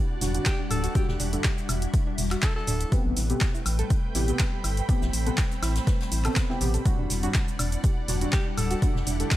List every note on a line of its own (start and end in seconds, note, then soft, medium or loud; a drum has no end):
0.00 3.64 G3 medium
0.00 9.37 G3 medium
0.00 3.69 D4 medium
0.00 2.88 E4 medium
0.00 2.88 F#4 medium
0.00 0.93 D5 medium
0.00 2.92 F#5 loud
0.21 0.38 E1 medium
0.21 0.31 G3 medium
0.21 0.28 D4 medium
0.21 0.32 D4 medium
0.21 0.32 F#4 loud
0.21 snare medium
0.21 closed hi-hat medium
0.21 open hi-hat loud
0.21 shaker medium
0.35 0.50 G3 medium
0.35 0.50 D4 medium
0.35 0.50 F#4 loud
0.35 closed hi-hat medium
0.35 shaker soft
0.45 0.60 G4 medium
0.45 kick loud
0.45 snare loud
0.45 clap loud
0.45 closed hi-hat medium
0.45 shaker soft
0.59 0.65 D4 medium
0.71 0.87 D1 medium
0.71 0.93 A4 loud
0.71 closed hi-hat medium
0.71 open hi-hat medium
0.71 high woodblock medium
0.71 shaker medium
0.84 0.87 F#4 loud
0.84 closed hi-hat soft
0.84 closed hi-hat medium
0.84 shaker soft
0.95 1.11 G3 loud
0.95 1.11 D4 medium
0.95 1.12 F#4 loud
0.95 1.04 G4 medium
0.95 2.90 E5 medium
0.95 kick loud
0.95 closed hi-hat medium
0.95 shaker soft
1.08 1.16 E1 loud
1.08 1.16 G4 medium
1.08 snare medium
1.20 1.36 E1 medium
1.20 1.29 D4 loud
1.20 closed hi-hat medium
1.20 open hi-hat loud
1.20 shaker medium
1.33 1.48 G3 medium
1.33 1.48 D4 medium
1.33 1.48 A4 medium
1.33 closed hi-hat medium
1.33 shaker soft
1.44 1.54 G4 medium
1.44 kick loud
1.44 snare loud
1.44 clap loud
1.44 closed hi-hat medium
1.44 shaker soft
1.58 closed hi-hat soft
1.58 shaker soft
1.69 1.86 E1 loud
1.69 1.75 D4 medium
1.69 closed hi-hat medium
1.69 open hi-hat loud
1.69 high woodblock medium
1.69 shaker medium
1.82 closed hi-hat medium
1.82 shaker soft
1.94 kick loud
1.94 closed hi-hat medium
1.94 shaker soft
2.07 2.12 D4 medium
2.17 2.35 E1 medium
2.17 open hi-hat medium
2.17 open hi-hat loud
2.17 shaker medium
2.31 2.35 F#4 loud
2.31 clap soft
2.31 closed hi-hat medium
2.31 high woodblock medium
2.31 shaker soft
2.42 2.53 A4 medium
2.42 kick loud
2.42 snare loud
2.42 clap loud
2.42 closed hi-hat medium
2.42 shaker soft
2.56 2.97 A4 loud
2.56 snare soft
2.67 2.84 D1 loud
2.67 2.77 D4 loud
2.67 closed hi-hat medium
2.67 open hi-hat loud
2.67 shaker medium
2.80 closed hi-hat soft
2.80 closed hi-hat medium
2.80 shaker soft
2.92 6.82 A3 medium
2.92 3.27 B3 loud
2.92 3.27 C4 medium
2.92 6.86 C4 medium
2.92 3.27 G4 loud
2.92 6.82 A4 medium
2.92 3.02 B4 medium
2.92 4.87 B4 loud
2.92 kick loud
2.92 closed hi-hat medium
2.92 shaker soft
3.05 3.13 A1 loud
3.10 6.86 G5 loud
3.16 3.33 A1 medium
3.16 3.23 E4 medium
3.16 8.44 B5 medium
3.16 snare soft
3.16 closed hi-hat medium
3.16 open hi-hat loud
3.16 shaker medium
3.30 3.55 B3 loud
3.30 3.55 C4 medium
3.30 3.55 G4 loud
3.30 closed hi-hat medium
3.30 shaker soft
3.41 kick loud
3.41 snare loud
3.41 clap loud
3.41 closed hi-hat medium
3.41 closed hi-hat soft
3.41 shaker soft
3.54 3.60 E4 medium
3.54 closed hi-hat soft
3.54 shaker soft
3.66 3.82 A1 loud
3.66 closed hi-hat medium
3.66 open hi-hat loud
3.66 high woodblock medium
3.66 shaker medium
3.79 3.82 A4 loud
3.79 closed hi-hat medium
3.79 shaker soft
3.90 kick loud
3.90 closed hi-hat medium
3.90 shaker soft
4.15 4.31 A1 medium
4.15 4.25 B3 medium
4.15 4.25 C4 medium
4.15 4.24 E4 loud
4.15 4.25 G4 loud
4.15 snare soft
4.15 closed hi-hat medium
4.15 open hi-hat loud
4.15 shaker medium
4.28 4.43 B3 medium
4.28 4.43 C4 medium
4.28 4.43 G4 medium
4.28 closed hi-hat medium
4.28 shaker soft
4.39 4.49 B4 medium
4.39 kick loud
4.39 snare loud
4.39 clap loud
4.39 closed hi-hat medium
4.39 shaker soft
4.64 4.81 G1 medium
4.64 4.70 E4 medium
4.64 closed hi-hat medium
4.64 open hi-hat medium
4.64 high woodblock medium
4.64 shaker medium
4.77 closed hi-hat soft
4.77 closed hi-hat medium
4.77 shaker soft
4.89 5.05 B3 medium
4.89 5.05 C4 medium
4.89 5.05 G4 loud
4.89 6.84 C5 loud
4.89 kick loud
4.89 closed hi-hat medium
4.89 closed hi-hat soft
4.89 shaker soft
5.02 5.09 A1 loud
5.02 5.07 E4 medium
5.02 snare medium
5.02 shaker soft
5.13 5.30 A1 medium
5.13 closed hi-hat medium
5.13 open hi-hat loud
5.13 shaker medium
5.26 5.41 B3 medium
5.26 5.42 C4 medium
5.26 5.30 A4 loud
5.26 5.42 B4 medium
5.26 closed hi-hat medium
5.26 shaker soft
5.37 kick loud
5.37 snare loud
5.37 clap loud
5.37 closed hi-hat medium
5.37 closed hi-hat soft
5.37 shaker soft
5.51 closed hi-hat soft
5.51 shaker soft
5.62 5.79 A1 loud
5.62 5.72 E4 loud
5.62 snare loud
5.62 closed hi-hat medium
5.62 open hi-hat loud
5.62 high woodblock medium
5.62 shaker medium
5.76 snare loud
5.76 closed hi-hat medium
5.76 shaker soft
5.87 5.97 B4 medium
5.87 kick loud
5.87 snare loud
5.87 closed hi-hat medium
5.87 shaker soft
6.00 snare loud
6.00 closed hi-hat medium
6.12 6.28 A1 medium
6.12 6.18 E4 medium
6.12 open hi-hat medium
6.12 open hi-hat loud
6.12 shaker medium
6.24 6.45 B3 medium
6.24 6.45 C4 medium
6.24 6.45 A4 loud
6.24 clap soft
6.24 closed hi-hat medium
6.24 high woodblock medium
6.24 shaker soft
6.36 kick loud
6.36 snare loud
6.36 clap loud
6.36 closed hi-hat medium
6.36 shaker soft
6.49 6.59 B3 medium
6.49 6.59 C4 medium
6.49 6.55 E4 medium
6.49 6.59 G4 loud
6.49 snare soft
6.61 6.77 A1 loud
6.61 6.82 B3 loud
6.61 6.82 C4 medium
6.61 6.82 G4 loud
6.61 closed hi-hat medium
6.61 open hi-hat loud
6.61 shaker medium
6.74 6.77 A4 loud
6.74 closed hi-hat medium
6.74 closed hi-hat soft
6.74 shaker soft
6.85 7.20 G3 loud
6.85 7.20 D4 medium
6.85 9.37 D4 medium
6.85 9.37 E4 medium
6.85 7.20 F#4 loud
6.85 8.80 D5 loud
6.85 9.37 F#5 medium
6.85 kick loud
6.85 closed hi-hat loud
6.85 closed hi-hat soft
6.85 shaker soft
6.99 7.06 E1 loud
6.99 7.04 D4 medium
7.04 9.37 F#5 medium
7.10 7.27 E1 medium
7.10 snare soft
7.10 closed hi-hat medium
7.10 open hi-hat loud
7.10 shaker medium
7.23 7.48 G3 loud
7.23 7.48 D4 medium
7.23 7.27 F#4 loud
7.23 7.48 F#4 loud
7.23 closed hi-hat medium
7.23 shaker soft
7.34 kick loud
7.34 snare loud
7.34 clap loud
7.34 closed hi-hat medium
7.34 shaker soft
7.45 9.37 G3 loud
7.45 closed hi-hat soft
7.45 shaker soft
7.59 7.76 E1 loud
7.59 7.69 D4 medium
7.59 closed hi-hat medium
7.59 open hi-hat medium
7.59 high woodblock medium
7.59 shaker medium
7.72 closed hi-hat medium
7.72 shaker soft
7.84 7.93 G4 medium
7.84 kick loud
7.84 closed hi-hat medium
7.84 shaker soft
8.08 8.25 E1 medium
8.08 8.18 G3 medium
8.08 8.15 D4 medium
8.08 8.18 D4 medium
8.08 8.18 F#4 loud
8.08 snare soft
8.08 closed hi-hat medium
8.08 open hi-hat loud
8.08 shaker medium
8.21 8.37 G3 medium
8.21 8.37 D4 medium
8.21 8.37 F#4 medium
8.21 closed hi-hat medium
8.21 shaker soft
8.32 8.47 G4 medium
8.32 kick loud
8.32 snare loud
8.32 clap loud
8.32 closed hi-hat medium
8.32 shaker soft
8.46 8.52 D4 medium
8.58 8.74 D1 medium
8.58 8.80 A4 medium
8.58 closed hi-hat medium
8.58 open hi-hat medium
8.58 high woodblock medium
8.58 shaker medium
8.70 8.74 F#4 loud
8.70 closed hi-hat soft
8.70 closed hi-hat medium
8.70 shaker soft
8.82 8.98 G3 loud
8.82 8.98 D4 medium
8.82 8.98 F#4 loud
8.82 9.37 E5 loud
8.82 kick loud
8.82 closed hi-hat medium
8.82 closed hi-hat loud
8.82 shaker soft
8.95 9.03 E1 loud
8.95 snare medium
9.07 9.23 E1 medium
9.07 9.16 D4 loud
9.07 closed hi-hat medium
9.07 open hi-hat loud
9.07 shaker medium
9.20 9.35 G3 medium
9.20 9.35 D4 medium
9.20 9.35 A4 medium
9.20 closed hi-hat medium
9.20 shaker soft
9.31 9.37 G4 medium
9.31 kick loud
9.31 snare loud
9.31 clap loud
9.31 closed hi-hat medium
9.31 shaker soft